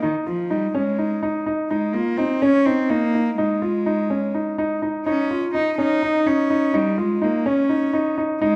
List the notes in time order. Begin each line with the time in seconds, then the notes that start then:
0.02 D#3 D#4
0.27 F3 F4
0.50 G3 D#4
0.74 G#3 C#4
0.99 D#4
1.23 D#4
1.46 D#4
1.70 G#3 D#4
1.93 A#3 F4
2.17 C4 D#4
2.42 C#4
2.66 C4 D#4
2.90 A#3 D#4
3.14 D#4
3.38 G#3 D#4
3.62 F4
3.86 D#4
4.10 C#4
4.34 D#4
4.58 D#4
4.82 D#4
5.06 C#4 D#4
5.31 F4
5.55 D#4
5.78 C#4 D#4
6.03 D#4
6.26 C#4 D#4
6.50 D#4
6.74 G3 D#4
6.98 G#3 F4
7.22 A#3 D#4
7.46 C#4
7.69 D#4
7.93 D#4
8.18 D#4
8.41 G#3 D#4